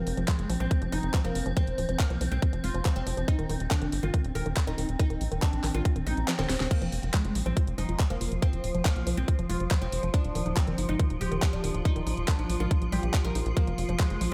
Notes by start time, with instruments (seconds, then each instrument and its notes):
Already playing: oud A#3, synth drone C4
0.07 analog synth bass F1, open hi-hat
0.17 analog synth bass F1, synth arpeggio sound F3, closed hi-hat
0.28 synth arpeggio sound F3, oud G#3, kick, clap, closed hi-hat
0.39 analog synth bass F#1, closed hi-hat
0.49 analog synth bass A#1, synth arpeggio sound F3, open hi-hat
0.60 analog synth bass A#1, synth arpeggio sound F3, oud C4, closed hi-hat
0.71 kick, closed hi-hat
0.82 analog synth bass F1, synth arpeggio sound F3, closed hi-hat
0.92 analog synth bass F1, synth arpeggio sound F3, oud D#4, open hi-hat
1.03 analog synth bass F1, closed hi-hat
1.14 synth arpeggio sound F3, kick, clap, closed hi-hat
1.25 analog synth bass F1, synth arpeggio sound F3, oud A#3, closed hi-hat
1.35 analog synth bass F1, open hi-hat
1.46 analog synth bass F1, synth arpeggio sound F3, closed hi-hat
1.57 synth arpeggio sound F3, oud C4, kick, closed hi-hat
1.67 analog synth bass F1, closed hi-hat
1.78 analog synth bass D#1, synth arpeggio sound F3, open hi-hat
1.89 analog synth bass F1, synth arpeggio sound F3, closed hi-hat
1.99 oud A#3, kick, clap, closed hi-hat
2.10 analog synth bass C2, synth arpeggio sound F3, closed hi-hat
2.21 analog synth bass C2, synth arpeggio sound F3, open hi-hat
2.32 analog synth bass C2, oud C4, closed hi-hat
2.42 synth arpeggio sound F3, kick, closed hi-hat
2.53 analog synth bass F1, synth arpeggio sound F3, closed hi-hat
2.64 analog synth bass F1, oud F4, open hi-hat
2.74 analog synth bass F1, synth arpeggio sound F3, closed hi-hat
2.85 synth arpeggio sound F3, kick, clap, closed hi-hat
2.96 analog synth bass F1, oud C4, closed hi-hat
3.07 analog synth bass F1, synth arpeggio sound F3, open hi-hat
3.17 analog synth bass F1, synth arpeggio sound F3, closed hi-hat
3.28 oud D#4, kick, closed hi-hat
3.39 analog synth bass D#1, synth arpeggio sound D#3, closed hi-hat
3.49 analog synth bass D#1, synth arpeggio sound D#3, open hi-hat
3.60 analog synth bass D#1, closed hi-hat
3.71 synth arpeggio sound D#3, oud D4, kick, clap, closed hi-hat
3.82 analog synth bass F1, synth arpeggio sound D#3, closed hi-hat
3.92 analog synth bass G1, open hi-hat
4.03 analog synth bass G1, synth arpeggio sound D#3, oud F4
4.14 synth arpeggio sound D#3, kick, closed hi-hat
4.25 analog synth bass D#1, closed hi-hat
4.35 analog synth bass D#1, synth arpeggio sound D#3, oud A#4, open hi-hat
4.46 analog synth bass D#1, synth arpeggio sound D#3, closed hi-hat
4.57 kick, clap, closed hi-hat
4.67 analog synth bass D#1, synth arpeggio sound D#3, oud D#4, closed hi-hat
4.78 analog synth bass D#1, synth arpeggio sound D#3, open hi-hat
4.89 analog synth bass D#1, closed hi-hat
4.99 synth arpeggio sound D#3, oud D#4, kick, closed hi-hat
5.10 analog synth bass D#1, synth arpeggio sound D#3, closed hi-hat
5.21 analog synth bass A#1, open hi-hat
5.32 analog synth bass D#1, synth arpeggio sound D#3, closed hi-hat
5.42 synth arpeggio sound D#3, oud D4, kick, clap, closed hi-hat
5.53 analog synth bass A#1, closed hi-hat
5.64 analog synth bass A#1, synth arpeggio sound D#3, clap, open hi-hat
5.74 analog synth bass A#1, synth arpeggio sound D#3, oud F4, closed hi-hat
5.85 kick, closed hi-hat
5.96 analog synth bass D#1, synth arpeggio sound D#3, closed hi-hat
6.07 analog synth bass A#1, synth arpeggio sound A#3, oud D#4, open hi-hat
6.17 analog synth bass A#1, closed hi-hat
6.28 synth arpeggio sound F3, snare, clap, closed hi-hat
6.39 analog synth bass D#1, synth arpeggio sound D#3, oud C4, snare, closed hi-hat
6.49 analog synth bass D#1, snare, open hi-hat
6.60 analog synth bass D#1, synth arpeggio sound D3, snare, closed hi-hat
6.71 synth drone F3 F4, oud A#3, kick, closed hi-hat, crash
6.82 analog synth bass F1, synth arpeggio sound F3, closed hi-hat
6.92 analog synth bass F1, synth arpeggio sound F4, open hi-hat
7.03 analog synth bass F1, closed hi-hat
7.14 synth arpeggio sound F3, oud G#3, kick, clap, closed hi-hat
7.25 analog synth bass F#1, synth arpeggio sound F4, closed hi-hat
7.35 analog synth bass A#1, open hi-hat
7.46 analog synth bass A#1, synth arpeggio sound F3, oud C4, closed hi-hat
7.57 synth arpeggio sound F4, kick, closed hi-hat
7.67 analog synth bass F1, closed hi-hat
7.78 analog synth bass F1, synth arpeggio sound F3, oud D#4, open hi-hat
7.89 analog synth bass F1, synth arpeggio sound F4, closed hi-hat
8.00 kick, clap, closed hi-hat
8.10 analog synth bass F1, synth arpeggio sound F3, oud A#3, closed hi-hat
8.21 analog synth bass F1, synth arpeggio sound F4, open hi-hat
8.32 analog synth bass F1, closed hi-hat
8.42 synth arpeggio sound F3, oud C4, kick, closed hi-hat
8.53 analog synth bass F1, synth arpeggio sound F4, closed hi-hat
8.64 analog synth bass D#1, open hi-hat
8.74 analog synth bass F1, synth arpeggio sound F3, closed hi-hat
8.85 oud A#3, synth arpeggio sound F4, kick, clap, closed hi-hat
8.96 analog synth bass C2, closed hi-hat
9.07 analog synth bass C2, synth arpeggio sound F3, open hi-hat
9.17 analog synth bass C2, oud C4, synth arpeggio sound F4, closed hi-hat
9.28 kick, closed hi-hat
9.39 analog synth bass F1, synth arpeggio sound F3, closed hi-hat
9.49 analog synth bass F1, synth arpeggio sound F4, oud F4, open hi-hat
9.60 analog synth bass F1, closed hi-hat
9.71 synth arpeggio sound F3, kick, clap, closed hi-hat
9.82 analog synth bass F1, oud C4, synth arpeggio sound F4, closed hi-hat
9.92 analog synth bass F1, open hi-hat
10.03 analog synth bass F1, synth arpeggio sound F3, closed hi-hat
10.14 oud D4, synth arpeggio sound D#4, kick, closed hi-hat
10.24 analog synth bass D#1, closed hi-hat
10.35 analog synth bass D#1, synth arpeggio sound D#3, open hi-hat
10.46 analog synth bass D#1, synth arpeggio sound D#4, closed hi-hat
10.57 oud C4, kick, clap, closed hi-hat
10.67 analog synth bass F1, synth arpeggio sound D#3, closed hi-hat
10.78 analog synth bass G1, synth arpeggio sound D#4, open hi-hat
10.89 analog synth bass G1, oud D#4, closed hi-hat
10.99 synth arpeggio sound D#3, kick, closed hi-hat
11.10 analog synth bass D#1, synth arpeggio sound D#4, closed hi-hat
11.21 analog synth bass D#1, oud G4, open hi-hat
11.32 analog synth bass D#1, synth arpeggio sound D#3, closed hi-hat
11.42 synth arpeggio sound D#4, kick, clap, closed hi-hat
11.53 analog synth bass D#1, oud D4, closed hi-hat
11.64 analog synth bass D#1, synth arpeggio sound D#3, open hi-hat
11.74 analog synth bass D#1, synth arpeggio sound D#4, closed hi-hat
11.85 oud D#4, kick, closed hi-hat
11.96 analog synth bass D#1, synth arpeggio sound D#3, closed hi-hat
12.07 analog synth bass A#1, synth arpeggio sound D#4, open hi-hat
12.17 analog synth bass D#1, closed hi-hat
12.28 synth arpeggio sound D#3, oud D4, kick, clap, closed hi-hat
12.39 analog synth bass A#1, synth arpeggio sound D#4, closed hi-hat
12.49 analog synth bass A#1, open hi-hat
12.60 analog synth bass A#1, synth arpeggio sound D#3, oud F4, closed hi-hat
12.71 synth arpeggio sound D#4, kick, closed hi-hat
12.82 analog synth bass A#1, closed hi-hat
12.92 analog synth bass A#1, synth arpeggio sound G3, oud G4, open hi-hat
13.03 analog synth bass A#1, synth arpeggio sound A#3, closed hi-hat
13.14 kick, clap, closed hi-hat
13.24 analog synth bass A#1, synth arpeggio sound D#3, oud A#4, closed hi-hat
13.35 analog synth bass A#1, synth arpeggio sound D#4, open hi-hat
13.46 analog synth bass A#1, closed hi-hat
13.57 synth arpeggio sound F3, oud A#3, kick, closed hi-hat
13.67 analog synth bass F1, synth arpeggio sound F3, closed hi-hat
13.78 analog synth bass F1, open hi-hat
13.89 analog synth bass F1, synth arpeggio sound F3, closed hi-hat
14.00 synth arpeggio sound F3, oud G#3, kick, clap, closed hi-hat
14.10 analog synth bass F#1, closed hi-hat
14.21 analog synth bass A#1, synth arpeggio sound F3, open hi-hat